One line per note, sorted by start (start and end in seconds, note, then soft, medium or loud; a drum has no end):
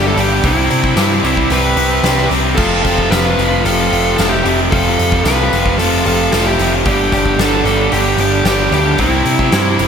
0.00 0.13 G1 medium
0.00 0.16 G2 medium
0.00 0.42 G2 medium
0.00 0.17 D3 medium
0.00 0.42 D3 loud
0.00 0.18 G3 medium
0.00 0.43 G3 loud
0.00 0.43 B3 loud
0.00 0.43 D4 loud
0.07 0.18 E4 medium
0.07 0.19 A4 medium
0.16 0.40 G1 medium
0.16 0.43 G2 medium
0.16 0.43 D3 loud
0.16 0.43 G3 loud
0.16 0.43 D4 medium
0.16 open hi-hat medium
0.16 tambourine medium
0.20 0.46 G4 loud
0.43 0.67 C2 medium
0.43 1.76 C3 medium
0.43 0.96 C3 loud
0.43 1.76 G3 medium
0.43 0.97 G3 medium
0.43 1.78 C4 loud
0.43 1.21 C4 medium
0.43 0.98 C4 loud
0.43 1.75 E4 loud
0.43 1.25 E4 loud
0.43 kick loud
0.43 open hi-hat medium
0.43 tambourine soft
0.70 0.94 C3 medium
0.70 open hi-hat medium
0.70 tambourine medium
0.84 kick medium
0.96 1.20 G2 loud
0.96 1.23 C3 medium
0.96 1.24 G3 loud
0.96 1.25 C4 medium
0.96 snare loud
0.96 open hi-hat medium
0.96 tambourine loud
1.23 1.47 C2 medium
1.23 1.49 C3 medium
1.23 1.50 G3 medium
1.23 1.50 C4 medium
1.23 1.52 C4 medium
1.23 1.53 E4 medium
1.23 open hi-hat medium
1.23 tambourine medium
1.37 kick medium
1.50 1.74 C2 medium
1.50 2.04 C3 medium
1.50 2.05 G3 loud
1.50 2.06 C4 loud
1.50 2.28 G4 loud
1.50 2.28 B4 loud
1.50 open hi-hat medium
1.50 tambourine medium
1.76 2.00 C2 medium
1.76 2.02 C3 medium
1.76 2.03 G3 medium
1.76 2.04 C4 medium
1.76 2.02 E4 medium
1.76 open hi-hat medium
1.76 tambourine soft
2.03 2.27 C2 loud
2.03 2.56 C3 medium
2.03 2.31 C3 medium
2.03 2.56 G3 medium
2.03 2.32 G3 medium
2.03 2.58 C4 medium
2.03 2.32 C4 medium
2.03 2.57 E4 medium
2.03 snare loud
2.03 open hi-hat medium
2.03 tambourine medium
2.18 snare soft
2.30 2.54 C2 medium
2.30 2.57 C3 medium
2.30 2.58 G3 medium
2.30 5.83 C4 medium
2.30 open hi-hat medium
2.30 tambourine medium
2.55 2.81 F1 medium
2.55 3.89 F2 medium
2.55 3.10 F2 loud
2.55 3.90 C3 medium
2.55 3.10 C3 loud
2.55 3.90 F3 medium
2.55 3.12 F3 loud
2.55 3.90 A3 medium
2.55 3.89 C4 loud
2.55 2.82 F4 medium
2.55 2.81 A4 loud
2.55 kick loud
2.55 crash loud
2.82 3.08 F1 medium
2.82 3.09 F4 medium
2.82 3.11 A4 medium
2.82 kick medium
2.82 open hi-hat medium
2.87 tambourine medium
2.98 kick medium
3.10 3.34 F1 loud
3.10 3.37 F2 medium
3.10 3.36 C3 medium
3.10 3.38 F3 loud
3.10 3.61 F4 medium
3.10 3.66 B4 loud
3.10 snare loud
3.10 open hi-hat medium
3.10 tambourine medium
3.37 3.61 F1 medium
3.37 3.63 F2 medium
3.37 3.64 C3 medium
3.37 3.64 F3 loud
3.37 open hi-hat medium
3.37 tambourine medium
3.64 3.88 F1 loud
3.64 4.17 F2 loud
3.64 4.18 C3 medium
3.64 4.18 F3 loud
3.64 4.15 F4 medium
3.64 4.16 A4 loud
3.64 open hi-hat medium
3.64 tambourine medium
3.90 4.15 F1 medium
3.90 4.16 F2 medium
3.90 4.17 C3 medium
3.90 4.17 F3 medium
3.90 4.17 A3 medium
3.90 4.16 C4 medium
3.90 open hi-hat medium
4.17 4.42 F1 medium
4.17 4.70 F2 medium
4.17 4.43 F2 medium
4.17 4.70 C3 medium
4.17 4.43 C3 medium
4.17 4.70 F3 loud
4.17 4.44 F3 medium
4.17 4.71 A3 loud
4.17 4.71 C4 medium
4.17 4.32 F4 medium
4.17 4.29 A4 loud
4.17 snare loud
4.17 open hi-hat medium
4.17 tambourine medium
4.29 4.59 E4 medium
4.29 4.57 G4 loud
4.29 snare soft
4.44 4.68 F1 medium
4.44 4.70 F2 medium
4.44 4.71 C3 loud
4.44 4.72 F3 loud
4.44 open hi-hat medium
4.44 tambourine medium
4.71 4.95 F1 loud
4.71 6.03 F2 loud
4.71 5.24 F2 medium
4.71 6.04 C3 medium
4.71 5.25 C3 loud
4.71 6.04 F3 loud
4.71 5.26 F3 loud
4.71 6.04 A3 medium
4.71 6.04 C4 loud
4.71 5.22 F4 loud
4.71 5.27 A4 loud
4.71 kick loud
4.71 open hi-hat medium
4.99 5.22 F2 medium
4.99 open hi-hat medium
4.99 tambourine medium
5.12 kick medium
5.24 5.48 C2 loud
5.24 5.52 F2 loud
5.24 5.53 C3 loud
5.24 5.53 F3 loud
5.24 5.75 F4 medium
5.24 5.74 B4 medium
5.24 snare loud
5.24 open hi-hat medium
5.24 tambourine medium
5.52 5.75 F1 medium
5.52 5.78 F2 medium
5.52 5.79 C3 medium
5.52 5.80 F3 medium
5.52 open hi-hat medium
5.52 tambourine medium
5.66 kick medium
5.78 6.01 F1 loud
5.78 6.31 F2 medium
5.78 6.32 C3 medium
5.78 6.32 F3 medium
5.78 6.04 F4 medium
5.78 6.03 A4 loud
5.78 open hi-hat medium
5.78 tambourine medium
6.05 6.29 F1 medium
6.05 6.30 F2 medium
6.05 6.31 C3 medium
6.05 6.31 F3 medium
6.05 6.31 A3 medium
6.05 6.30 C4 medium
6.05 6.31 F4 medium
6.05 6.31 A4 medium
6.05 open hi-hat medium
6.31 6.56 F1 loud
6.31 6.84 F2 medium
6.31 6.57 F2 medium
6.31 6.84 C3 medium
6.31 6.59 C3 medium
6.31 6.84 F3 medium
6.31 6.59 F3 loud
6.31 6.85 A3 medium
6.31 6.85 C4 loud
6.31 6.45 F4 medium
6.31 6.45 A4 loud
6.31 snare loud
6.31 open hi-hat medium
6.31 tambourine medium
6.46 6.71 E4 medium
6.46 6.71 G4 loud
6.46 snare soft
6.59 6.82 F1 medium
6.59 6.84 F2 medium
6.59 6.85 C3 medium
6.59 6.85 F3 loud
6.59 open hi-hat medium
6.59 tambourine medium
6.84 7.09 G1 loud
6.84 7.38 G2 medium
6.84 8.18 G2 medium
6.84 7.38 D3 medium
6.84 8.18 D3 medium
6.84 7.39 G3 loud
6.84 8.18 G3 loud
6.84 8.18 B3 loud
6.84 7.11 D4 medium
6.84 8.18 D4 loud
6.84 7.12 G4 loud
6.84 kick loud
6.84 open hi-hat medium
7.12 7.35 G1 medium
7.12 7.38 D4 medium
7.12 7.39 G4 medium
7.12 kick medium
7.12 open hi-hat medium
7.12 tambourine medium
7.26 kick medium
7.38 7.61 G1 loud
7.38 7.64 G2 medium
7.38 7.65 D3 loud
7.38 7.66 G3 loud
7.38 7.89 D4 medium
7.38 7.92 A4 medium
7.38 snare loud
7.38 open hi-hat medium
7.38 tambourine loud
7.64 7.88 G1 medium
7.64 7.91 G2 medium
7.64 7.91 D3 medium
7.64 7.92 G3 medium
7.64 open hi-hat medium
7.64 tambourine medium
7.92 8.15 G1 loud
7.92 8.45 G2 medium
7.92 8.45 D3 loud
7.92 8.46 G3 medium
7.92 8.18 D4 medium
7.92 8.17 G4 loud
7.92 open hi-hat medium
7.92 tambourine medium
8.18 8.41 G1 medium
8.18 8.44 G2 medium
8.18 8.45 D3 medium
8.18 8.45 G3 medium
8.18 8.44 B3 medium
8.18 8.44 D4 loud
8.18 8.45 D4 medium
8.18 8.45 G4 medium
8.18 open hi-hat medium
8.44 8.68 G1 loud
8.44 8.97 G2 medium
8.44 8.71 G2 medium
8.44 8.98 D3 medium
8.44 8.72 D3 medium
8.44 8.98 G3 loud
8.44 8.73 G3 medium
8.44 8.99 B3 loud
8.44 8.99 D4 medium
8.44 8.72 G4 medium
8.44 snare loud
8.44 open hi-hat medium
8.44 tambourine loud
8.48 8.72 D4 medium
8.71 8.95 D2 medium
8.71 8.98 G2 medium
8.71 8.98 D3 medium
8.71 8.98 G3 loud
8.71 9.01 G4 medium
8.71 open hi-hat medium
8.71 tambourine medium
8.76 8.99 D4 medium
8.98 9.22 C2 medium
8.98 9.88 C3 medium
8.98 9.51 C3 loud
8.98 9.52 G3 loud
8.98 9.88 G3 loud
8.98 9.50 C4 medium
8.98 9.88 C4 loud
8.98 9.52 C4 loud
8.98 9.53 E4 loud
8.98 9.88 E4 loud
8.98 kick loud
8.98 open hi-hat medium
8.98 tambourine soft
9.25 9.49 C3 medium
9.25 open hi-hat medium
9.25 tambourine medium
9.39 kick medium
9.52 9.76 G2 loud
9.52 9.78 C3 medium
9.52 9.79 G3 medium
9.52 9.80 C4 medium
9.52 9.88 C4 medium
9.52 9.88 E4 medium
9.52 snare loud
9.52 open hi-hat medium
9.52 tambourine loud
9.79 9.88 F#1 medium
9.79 9.88 C3 medium
9.79 9.88 G3 medium
9.79 9.88 C4 medium
9.79 open hi-hat medium
9.79 tambourine medium